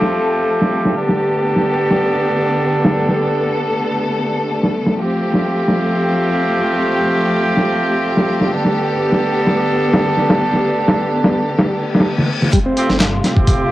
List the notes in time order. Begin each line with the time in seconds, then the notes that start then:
Already playing: F3 A3 C4 F4 G4 A4
0.02 snare
0.49 open hi-hat
0.62 snare
0.73 closed hi-hat
0.85 snare
0.95 D3 B3 D4 G4 A4
1.09 snare
1.20 closed hi-hat
1.43 closed hi-hat
1.56 snare
1.67 closed hi-hat
1.91 snare
2.14 closed hi-hat
2.61 closed hi-hat
2.84 A4, snare
3.09 snare, closed hi-hat
3.56 closed hi-hat
3.79 closed hi-hat
4.03 closed hi-hat
4.16 closed hi-hat
4.39 closed hi-hat
4.51 closed hi-hat
4.63 snare
4.74 closed hi-hat
4.87 snare
4.97 F3 A3 C4 F4 G4, closed hi-hat
5.21 closed hi-hat
5.34 snare
5.45 closed hi-hat
5.68 snare
5.92 closed hi-hat
6.39 closed hi-hat
6.63 closed hi-hat
6.86 closed hi-hat
7.10 closed hi-hat
7.33 closed hi-hat
7.57 snare
7.80 closed hi-hat
8.04 open hi-hat
8.17 snare
8.28 closed hi-hat
8.41 snare
8.51 D3 B3 D4 G4 A4, closed hi-hat
8.65 snare
8.76 closed hi-hat
8.99 closed hi-hat
9.12 snare
9.23 closed hi-hat
9.47 snare, closed hi-hat
9.70 closed hi-hat
9.93 snare, closed hi-hat
10.17 snare, closed hi-hat
10.30 snare, closed hi-hat
10.53 snare, closed hi-hat
10.64 closed hi-hat
10.77 closed hi-hat
10.88 snare, closed hi-hat
11.12 closed hi-hat
11.24 snare, closed hi-hat
11.48 closed hi-hat
11.59 snare, closed hi-hat, reverse cymbal
11.82 closed hi-hat
11.95 snare, closed hi-hat
12.00 snare, closed hi-hat
12.06 closed hi-hat
12.18 snare
12.29 closed hi-hat
12.42 snare
12.53 G1 C3 G3 A3 F4, kick, closed hi-hat, riser
12.66 C4
12.76 A3 C4 F4 G4, closed hi-hat
12.89 G1 C4, snare
13.00 snare, clap, closed hi-hat
13.24 A3 C4 F4 G4, snare, closed hi-hat
13.36 D1, kick
13.47 kick, closed hi-hat